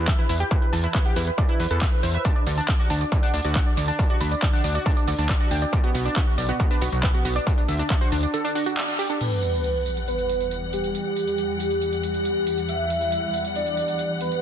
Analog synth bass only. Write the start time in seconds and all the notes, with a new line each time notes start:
Already playing: E2
0.29 E2
0.73 E2
1.16 E2
1.60 E2
1.71 E2
2.03 E2
2.47 D2
2.90 D2
3.34 D2
3.45 D2
3.77 D2
4.21 D2
4.64 D2
5.07 D2
5.18 D2
5.51 D2
5.95 B1
6.38 B1
6.82 B1
6.92 B1
7.25 B1
7.68 D2
8.12 D2